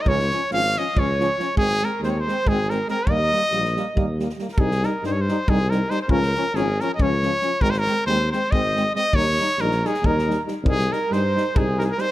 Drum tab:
SD |-oo-o-o---o-o-|-oo-o-o---o-o-|--ooooo---oooo|-oo-o-o---o-o-|
BD |o-------o-----|o-------o-----|o-------o-----|o-------o-----|

SD |-oo-o-o---o-o-|-oo-o-o---o-o-|--o-oooo-oo-o-|-oo-o-o---o-o-|
BD |o-------o-----|o-------o-----|o-------o-----|o-------o-----|